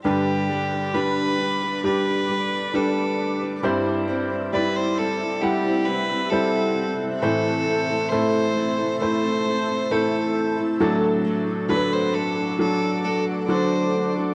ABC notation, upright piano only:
X:1
M:4/4
L:1/8
Q:1/4=67
K:G
V:1 name="Upright piano"
[G,DB]2 [G,DB]2 [G,DG]2 [G,DB]2 | [G,Ec]2 [G,Ed]2 [G,Ef]2 [G,Ec]2 | [A,Ec]2 [A,EA]2 [A,Ec]2 [A,Ec]2 | [F,DA]2 [F,DAB]2 [F,DA]2 [F,DA]2 |]
V:2 name="Upright piano" clef=bass
[G,,D,]3 z4 z | G,,3 z4 z | [A,,E,]3 z4 z | A,,3 z4 z |]